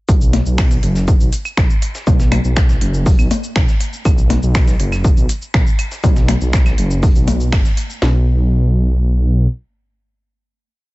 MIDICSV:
0, 0, Header, 1, 4, 480
1, 0, Start_track
1, 0, Tempo, 495868
1, 83, Time_signature, 4, 2, 24, 8
1, 10597, End_track
2, 0, Start_track
2, 0, Title_t, "Detuned saw bass"
2, 0, Program_c, 0, 39
2, 83, Note_on_c, 0, 35, 99
2, 397, Note_off_c, 0, 35, 0
2, 446, Note_on_c, 0, 35, 82
2, 756, Note_off_c, 0, 35, 0
2, 803, Note_on_c, 0, 30, 88
2, 1117, Note_off_c, 0, 30, 0
2, 1166, Note_on_c, 0, 35, 99
2, 1254, Note_off_c, 0, 35, 0
2, 1523, Note_on_c, 0, 35, 100
2, 1615, Note_off_c, 0, 35, 0
2, 2003, Note_on_c, 0, 35, 100
2, 2317, Note_off_c, 0, 35, 0
2, 2366, Note_on_c, 0, 35, 80
2, 2676, Note_off_c, 0, 35, 0
2, 2723, Note_on_c, 0, 30, 84
2, 3037, Note_off_c, 0, 30, 0
2, 3086, Note_on_c, 0, 35, 97
2, 3174, Note_off_c, 0, 35, 0
2, 3443, Note_on_c, 0, 35, 101
2, 3535, Note_off_c, 0, 35, 0
2, 3923, Note_on_c, 0, 35, 100
2, 4237, Note_off_c, 0, 35, 0
2, 4286, Note_on_c, 0, 35, 81
2, 4596, Note_off_c, 0, 35, 0
2, 4643, Note_on_c, 0, 30, 85
2, 4957, Note_off_c, 0, 30, 0
2, 5006, Note_on_c, 0, 35, 96
2, 5094, Note_off_c, 0, 35, 0
2, 5363, Note_on_c, 0, 35, 101
2, 5455, Note_off_c, 0, 35, 0
2, 5843, Note_on_c, 0, 35, 101
2, 6157, Note_off_c, 0, 35, 0
2, 6206, Note_on_c, 0, 35, 82
2, 6517, Note_off_c, 0, 35, 0
2, 6564, Note_on_c, 0, 30, 85
2, 6877, Note_off_c, 0, 30, 0
2, 6927, Note_on_c, 0, 35, 98
2, 7284, Note_on_c, 0, 30, 107
2, 7298, Note_off_c, 0, 35, 0
2, 7376, Note_off_c, 0, 30, 0
2, 7764, Note_on_c, 0, 35, 97
2, 9165, Note_off_c, 0, 35, 0
2, 10597, End_track
3, 0, Start_track
3, 0, Title_t, "Percussion blips"
3, 323, Note_on_c, 9, 64, 78
3, 420, Note_off_c, 9, 64, 0
3, 2004, Note_on_c, 9, 64, 84
3, 2100, Note_off_c, 9, 64, 0
3, 2243, Note_on_c, 9, 64, 75
3, 2340, Note_off_c, 9, 64, 0
3, 3204, Note_on_c, 9, 64, 83
3, 3300, Note_off_c, 9, 64, 0
3, 4164, Note_on_c, 9, 64, 74
3, 4260, Note_off_c, 9, 64, 0
3, 5843, Note_on_c, 9, 64, 85
3, 5940, Note_off_c, 9, 64, 0
3, 6083, Note_on_c, 9, 64, 74
3, 6180, Note_off_c, 9, 64, 0
3, 7044, Note_on_c, 9, 64, 84
3, 7141, Note_off_c, 9, 64, 0
3, 10597, End_track
4, 0, Start_track
4, 0, Title_t, "Drums"
4, 83, Note_on_c, 9, 36, 121
4, 83, Note_on_c, 9, 42, 88
4, 83, Note_on_c, 9, 82, 71
4, 180, Note_off_c, 9, 36, 0
4, 180, Note_off_c, 9, 42, 0
4, 180, Note_off_c, 9, 82, 0
4, 206, Note_on_c, 9, 82, 48
4, 303, Note_off_c, 9, 82, 0
4, 323, Note_on_c, 9, 38, 48
4, 323, Note_on_c, 9, 42, 72
4, 323, Note_on_c, 9, 46, 103
4, 420, Note_off_c, 9, 38, 0
4, 420, Note_off_c, 9, 42, 0
4, 420, Note_off_c, 9, 46, 0
4, 446, Note_on_c, 9, 82, 46
4, 543, Note_off_c, 9, 82, 0
4, 563, Note_on_c, 9, 26, 122
4, 563, Note_on_c, 9, 36, 116
4, 563, Note_on_c, 9, 38, 122
4, 563, Note_on_c, 9, 42, 89
4, 563, Note_on_c, 9, 75, 52
4, 563, Note_on_c, 9, 82, 70
4, 660, Note_off_c, 9, 26, 0
4, 660, Note_off_c, 9, 36, 0
4, 660, Note_off_c, 9, 38, 0
4, 660, Note_off_c, 9, 42, 0
4, 660, Note_off_c, 9, 75, 0
4, 660, Note_off_c, 9, 82, 0
4, 686, Note_on_c, 9, 38, 50
4, 686, Note_on_c, 9, 82, 47
4, 783, Note_off_c, 9, 38, 0
4, 783, Note_off_c, 9, 82, 0
4, 803, Note_on_c, 9, 42, 69
4, 803, Note_on_c, 9, 46, 102
4, 900, Note_off_c, 9, 42, 0
4, 900, Note_off_c, 9, 46, 0
4, 926, Note_on_c, 9, 38, 40
4, 926, Note_on_c, 9, 82, 46
4, 1023, Note_off_c, 9, 38, 0
4, 1023, Note_off_c, 9, 82, 0
4, 1043, Note_on_c, 9, 36, 123
4, 1043, Note_on_c, 9, 42, 90
4, 1043, Note_on_c, 9, 82, 67
4, 1140, Note_off_c, 9, 36, 0
4, 1140, Note_off_c, 9, 42, 0
4, 1140, Note_off_c, 9, 82, 0
4, 1166, Note_on_c, 9, 82, 49
4, 1263, Note_off_c, 9, 82, 0
4, 1283, Note_on_c, 9, 42, 71
4, 1283, Note_on_c, 9, 46, 107
4, 1283, Note_on_c, 9, 82, 69
4, 1380, Note_off_c, 9, 42, 0
4, 1380, Note_off_c, 9, 46, 0
4, 1380, Note_off_c, 9, 82, 0
4, 1406, Note_on_c, 9, 75, 51
4, 1406, Note_on_c, 9, 82, 48
4, 1503, Note_off_c, 9, 75, 0
4, 1503, Note_off_c, 9, 82, 0
4, 1523, Note_on_c, 9, 36, 123
4, 1523, Note_on_c, 9, 38, 114
4, 1523, Note_on_c, 9, 42, 90
4, 1524, Note_on_c, 9, 26, 126
4, 1620, Note_off_c, 9, 36, 0
4, 1620, Note_off_c, 9, 38, 0
4, 1620, Note_off_c, 9, 42, 0
4, 1621, Note_off_c, 9, 26, 0
4, 1646, Note_on_c, 9, 82, 46
4, 1743, Note_off_c, 9, 82, 0
4, 1763, Note_on_c, 9, 42, 70
4, 1764, Note_on_c, 9, 46, 103
4, 1764, Note_on_c, 9, 82, 55
4, 1860, Note_off_c, 9, 42, 0
4, 1860, Note_off_c, 9, 46, 0
4, 1860, Note_off_c, 9, 82, 0
4, 1886, Note_on_c, 9, 38, 52
4, 1886, Note_on_c, 9, 82, 48
4, 1983, Note_off_c, 9, 38, 0
4, 1983, Note_off_c, 9, 82, 0
4, 2003, Note_on_c, 9, 36, 125
4, 2004, Note_on_c, 9, 42, 88
4, 2004, Note_on_c, 9, 82, 67
4, 2100, Note_off_c, 9, 36, 0
4, 2100, Note_off_c, 9, 82, 0
4, 2101, Note_off_c, 9, 42, 0
4, 2126, Note_on_c, 9, 38, 42
4, 2126, Note_on_c, 9, 82, 46
4, 2223, Note_off_c, 9, 38, 0
4, 2223, Note_off_c, 9, 82, 0
4, 2243, Note_on_c, 9, 26, 65
4, 2243, Note_on_c, 9, 46, 108
4, 2243, Note_on_c, 9, 75, 48
4, 2244, Note_on_c, 9, 42, 76
4, 2340, Note_off_c, 9, 26, 0
4, 2340, Note_off_c, 9, 42, 0
4, 2340, Note_off_c, 9, 46, 0
4, 2340, Note_off_c, 9, 75, 0
4, 2366, Note_on_c, 9, 82, 45
4, 2463, Note_off_c, 9, 82, 0
4, 2483, Note_on_c, 9, 26, 123
4, 2483, Note_on_c, 9, 36, 124
4, 2483, Note_on_c, 9, 38, 119
4, 2483, Note_on_c, 9, 42, 92
4, 2483, Note_on_c, 9, 82, 68
4, 2580, Note_off_c, 9, 26, 0
4, 2580, Note_off_c, 9, 36, 0
4, 2580, Note_off_c, 9, 38, 0
4, 2580, Note_off_c, 9, 42, 0
4, 2580, Note_off_c, 9, 82, 0
4, 2606, Note_on_c, 9, 38, 55
4, 2606, Note_on_c, 9, 82, 46
4, 2703, Note_off_c, 9, 38, 0
4, 2703, Note_off_c, 9, 82, 0
4, 2723, Note_on_c, 9, 42, 70
4, 2723, Note_on_c, 9, 46, 110
4, 2820, Note_off_c, 9, 42, 0
4, 2820, Note_off_c, 9, 46, 0
4, 2846, Note_on_c, 9, 82, 46
4, 2943, Note_off_c, 9, 82, 0
4, 2963, Note_on_c, 9, 36, 125
4, 2963, Note_on_c, 9, 46, 84
4, 2963, Note_on_c, 9, 82, 69
4, 3060, Note_off_c, 9, 36, 0
4, 3060, Note_off_c, 9, 46, 0
4, 3060, Note_off_c, 9, 82, 0
4, 3086, Note_on_c, 9, 75, 51
4, 3086, Note_on_c, 9, 82, 46
4, 3183, Note_off_c, 9, 75, 0
4, 3183, Note_off_c, 9, 82, 0
4, 3203, Note_on_c, 9, 42, 71
4, 3204, Note_on_c, 9, 46, 112
4, 3204, Note_on_c, 9, 82, 70
4, 3300, Note_off_c, 9, 42, 0
4, 3300, Note_off_c, 9, 46, 0
4, 3300, Note_off_c, 9, 82, 0
4, 3326, Note_on_c, 9, 82, 45
4, 3423, Note_off_c, 9, 82, 0
4, 3443, Note_on_c, 9, 26, 126
4, 3443, Note_on_c, 9, 36, 127
4, 3443, Note_on_c, 9, 38, 115
4, 3443, Note_on_c, 9, 42, 88
4, 3540, Note_off_c, 9, 26, 0
4, 3540, Note_off_c, 9, 36, 0
4, 3540, Note_off_c, 9, 38, 0
4, 3540, Note_off_c, 9, 42, 0
4, 3566, Note_on_c, 9, 38, 38
4, 3566, Note_on_c, 9, 82, 46
4, 3663, Note_off_c, 9, 38, 0
4, 3663, Note_off_c, 9, 82, 0
4, 3683, Note_on_c, 9, 42, 70
4, 3683, Note_on_c, 9, 46, 108
4, 3683, Note_on_c, 9, 82, 51
4, 3780, Note_off_c, 9, 42, 0
4, 3780, Note_off_c, 9, 46, 0
4, 3780, Note_off_c, 9, 82, 0
4, 3806, Note_on_c, 9, 82, 46
4, 3903, Note_off_c, 9, 82, 0
4, 3923, Note_on_c, 9, 36, 127
4, 3923, Note_on_c, 9, 42, 85
4, 3923, Note_on_c, 9, 75, 54
4, 3923, Note_on_c, 9, 82, 68
4, 4020, Note_off_c, 9, 36, 0
4, 4020, Note_off_c, 9, 42, 0
4, 4020, Note_off_c, 9, 75, 0
4, 4020, Note_off_c, 9, 82, 0
4, 4046, Note_on_c, 9, 82, 45
4, 4143, Note_off_c, 9, 82, 0
4, 4163, Note_on_c, 9, 38, 47
4, 4163, Note_on_c, 9, 42, 72
4, 4164, Note_on_c, 9, 46, 107
4, 4260, Note_off_c, 9, 38, 0
4, 4260, Note_off_c, 9, 42, 0
4, 4260, Note_off_c, 9, 46, 0
4, 4286, Note_on_c, 9, 82, 45
4, 4383, Note_off_c, 9, 82, 0
4, 4403, Note_on_c, 9, 36, 122
4, 4403, Note_on_c, 9, 38, 119
4, 4403, Note_on_c, 9, 42, 91
4, 4404, Note_on_c, 9, 26, 125
4, 4404, Note_on_c, 9, 82, 66
4, 4500, Note_off_c, 9, 26, 0
4, 4500, Note_off_c, 9, 36, 0
4, 4500, Note_off_c, 9, 38, 0
4, 4500, Note_off_c, 9, 42, 0
4, 4500, Note_off_c, 9, 82, 0
4, 4526, Note_on_c, 9, 38, 50
4, 4526, Note_on_c, 9, 82, 46
4, 4623, Note_off_c, 9, 38, 0
4, 4623, Note_off_c, 9, 82, 0
4, 4643, Note_on_c, 9, 42, 71
4, 4643, Note_on_c, 9, 46, 116
4, 4740, Note_off_c, 9, 42, 0
4, 4740, Note_off_c, 9, 46, 0
4, 4766, Note_on_c, 9, 38, 40
4, 4766, Note_on_c, 9, 75, 52
4, 4766, Note_on_c, 9, 82, 44
4, 4863, Note_off_c, 9, 38, 0
4, 4863, Note_off_c, 9, 75, 0
4, 4863, Note_off_c, 9, 82, 0
4, 4883, Note_on_c, 9, 36, 127
4, 4883, Note_on_c, 9, 42, 88
4, 4883, Note_on_c, 9, 82, 67
4, 4980, Note_off_c, 9, 36, 0
4, 4980, Note_off_c, 9, 42, 0
4, 4980, Note_off_c, 9, 82, 0
4, 5006, Note_on_c, 9, 82, 45
4, 5103, Note_off_c, 9, 82, 0
4, 5123, Note_on_c, 9, 42, 71
4, 5123, Note_on_c, 9, 46, 113
4, 5123, Note_on_c, 9, 82, 69
4, 5220, Note_off_c, 9, 42, 0
4, 5220, Note_off_c, 9, 46, 0
4, 5220, Note_off_c, 9, 82, 0
4, 5246, Note_on_c, 9, 82, 45
4, 5343, Note_off_c, 9, 82, 0
4, 5363, Note_on_c, 9, 36, 127
4, 5363, Note_on_c, 9, 38, 115
4, 5363, Note_on_c, 9, 42, 90
4, 5364, Note_on_c, 9, 26, 122
4, 5460, Note_off_c, 9, 26, 0
4, 5460, Note_off_c, 9, 36, 0
4, 5460, Note_off_c, 9, 38, 0
4, 5460, Note_off_c, 9, 42, 0
4, 5486, Note_on_c, 9, 82, 44
4, 5583, Note_off_c, 9, 82, 0
4, 5603, Note_on_c, 9, 42, 71
4, 5604, Note_on_c, 9, 46, 117
4, 5604, Note_on_c, 9, 75, 51
4, 5604, Note_on_c, 9, 82, 53
4, 5700, Note_off_c, 9, 42, 0
4, 5700, Note_off_c, 9, 46, 0
4, 5700, Note_off_c, 9, 75, 0
4, 5700, Note_off_c, 9, 82, 0
4, 5726, Note_on_c, 9, 38, 50
4, 5726, Note_on_c, 9, 82, 47
4, 5823, Note_off_c, 9, 38, 0
4, 5823, Note_off_c, 9, 82, 0
4, 5843, Note_on_c, 9, 36, 125
4, 5843, Note_on_c, 9, 82, 68
4, 5844, Note_on_c, 9, 42, 85
4, 5940, Note_off_c, 9, 36, 0
4, 5940, Note_off_c, 9, 82, 0
4, 5941, Note_off_c, 9, 42, 0
4, 5966, Note_on_c, 9, 82, 43
4, 5967, Note_on_c, 9, 38, 43
4, 6063, Note_off_c, 9, 82, 0
4, 6064, Note_off_c, 9, 38, 0
4, 6083, Note_on_c, 9, 26, 60
4, 6083, Note_on_c, 9, 46, 106
4, 6084, Note_on_c, 9, 42, 75
4, 6180, Note_off_c, 9, 26, 0
4, 6180, Note_off_c, 9, 46, 0
4, 6181, Note_off_c, 9, 42, 0
4, 6207, Note_on_c, 9, 82, 43
4, 6303, Note_off_c, 9, 82, 0
4, 6324, Note_on_c, 9, 26, 123
4, 6324, Note_on_c, 9, 36, 122
4, 6324, Note_on_c, 9, 38, 126
4, 6324, Note_on_c, 9, 42, 93
4, 6324, Note_on_c, 9, 82, 68
4, 6420, Note_off_c, 9, 36, 0
4, 6421, Note_off_c, 9, 26, 0
4, 6421, Note_off_c, 9, 38, 0
4, 6421, Note_off_c, 9, 42, 0
4, 6421, Note_off_c, 9, 82, 0
4, 6446, Note_on_c, 9, 38, 55
4, 6447, Note_on_c, 9, 75, 56
4, 6447, Note_on_c, 9, 82, 45
4, 6543, Note_off_c, 9, 38, 0
4, 6544, Note_off_c, 9, 75, 0
4, 6544, Note_off_c, 9, 82, 0
4, 6564, Note_on_c, 9, 42, 73
4, 6564, Note_on_c, 9, 46, 108
4, 6661, Note_off_c, 9, 42, 0
4, 6661, Note_off_c, 9, 46, 0
4, 6687, Note_on_c, 9, 82, 42
4, 6783, Note_off_c, 9, 82, 0
4, 6803, Note_on_c, 9, 36, 126
4, 6804, Note_on_c, 9, 46, 82
4, 6804, Note_on_c, 9, 82, 64
4, 6900, Note_off_c, 9, 36, 0
4, 6900, Note_off_c, 9, 82, 0
4, 6901, Note_off_c, 9, 46, 0
4, 6927, Note_on_c, 9, 82, 44
4, 7023, Note_off_c, 9, 82, 0
4, 7044, Note_on_c, 9, 42, 73
4, 7044, Note_on_c, 9, 46, 113
4, 7044, Note_on_c, 9, 82, 66
4, 7141, Note_off_c, 9, 42, 0
4, 7141, Note_off_c, 9, 46, 0
4, 7141, Note_off_c, 9, 82, 0
4, 7167, Note_on_c, 9, 82, 44
4, 7264, Note_off_c, 9, 82, 0
4, 7284, Note_on_c, 9, 26, 121
4, 7284, Note_on_c, 9, 36, 127
4, 7284, Note_on_c, 9, 38, 115
4, 7284, Note_on_c, 9, 42, 86
4, 7284, Note_on_c, 9, 75, 54
4, 7284, Note_on_c, 9, 82, 30
4, 7380, Note_off_c, 9, 36, 0
4, 7381, Note_off_c, 9, 26, 0
4, 7381, Note_off_c, 9, 38, 0
4, 7381, Note_off_c, 9, 42, 0
4, 7381, Note_off_c, 9, 75, 0
4, 7381, Note_off_c, 9, 82, 0
4, 7407, Note_on_c, 9, 38, 39
4, 7407, Note_on_c, 9, 82, 44
4, 7504, Note_off_c, 9, 38, 0
4, 7504, Note_off_c, 9, 82, 0
4, 7524, Note_on_c, 9, 42, 73
4, 7524, Note_on_c, 9, 46, 112
4, 7524, Note_on_c, 9, 82, 51
4, 7621, Note_off_c, 9, 42, 0
4, 7621, Note_off_c, 9, 46, 0
4, 7621, Note_off_c, 9, 82, 0
4, 7647, Note_on_c, 9, 82, 44
4, 7744, Note_off_c, 9, 82, 0
4, 7763, Note_on_c, 9, 38, 107
4, 7860, Note_off_c, 9, 38, 0
4, 10597, End_track
0, 0, End_of_file